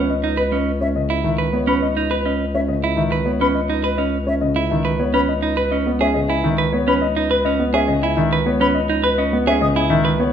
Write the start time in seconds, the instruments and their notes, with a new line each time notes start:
Already playing: bass clarinet C#2, clean electric guitar C#4, grand piano B4
0.10 grand piano D#5
0.24 clean electric guitar D#4
0.37 clean electric guitar B4, grand piano B4
0.52 clean electric guitar C#4, grand piano D#5
0.81 grand piano C#4, flute E5
0.96 grand piano C#3 D#5
1.10 clean electric guitar E4
1.24 grand piano D#3 E5
1.38 clean electric guitar B4
1.53 grand piano B3 C#5
1.67 clean electric guitar C#4, grand piano B4, flute B5
1.82 grand piano D#5
1.97 clean electric guitar D#4
2.10 grand piano B4, clean electric guitar B4
2.26 clean electric guitar C#4, grand piano D#5
2.54 grand piano C#4, flute E5
2.68 grand piano C#3 D#5
2.84 clean electric guitar E4
2.97 grand piano D#3 E5
3.12 clean electric guitar B4
3.26 grand piano B3 C#5
3.40 clean electric guitar C#4, grand piano B4, flute B5
3.55 grand piano D#5
3.70 clean electric guitar D#4
3.83 grand piano B4, clean electric guitar B4
3.98 clean electric guitar C#4, grand piano D#5
4.27 grand piano C#4, flute E5
4.41 grand piano C#3 D#5
4.56 clean electric guitar E4
4.70 grand piano D#3 E5
4.85 clean electric guitar B4
4.99 grand piano B3 C#5
5.14 clean electric guitar C#4, grand piano B4, flute B5
5.28 grand piano D#5
5.42 clean electric guitar D#4
5.57 grand piano B4, clean electric guitar B4
5.71 clean electric guitar C#4, grand piano D#5
5.87 grand piano B3
6.00 grand piano C#4, clean electric guitar G#4, flute E5
6.14 grand piano C#3 D#5
6.29 clean electric guitar E4, grand piano G#5
6.44 grand piano D#3 E5
6.58 clean electric guitar B4
6.72 grand piano B3 C#5
6.88 clean electric guitar C#4, grand piano B4, flute B5
7.02 grand piano D#5
7.17 clean electric guitar D#4
7.30 grand piano B4, clean electric guitar B4
7.45 clean electric guitar C#4, grand piano D#5
7.60 grand piano B3
7.74 grand piano C#4, clean electric guitar G#4, flute E5
7.88 grand piano C#3 D#5
8.02 clean electric guitar E4, grand piano G#5
8.17 grand piano D#3 E5
8.33 clean electric guitar B4
8.46 grand piano B3 C#5
8.60 clean electric guitar C#4, grand piano B4, flute B5
8.75 grand piano D#5
8.89 clean electric guitar D#4
9.04 grand piano B4, clean electric guitar B4
9.18 clean electric guitar C#4, grand piano D#5
9.33 grand piano B3
9.47 grand piano C#4, clean electric guitar G#4, flute E5
9.61 grand piano C#3 D#5, flute D#6
9.76 clean electric guitar E4, grand piano G#5
9.90 grand piano D#3 E5
10.05 clean electric guitar B4
10.19 grand piano B3 C#5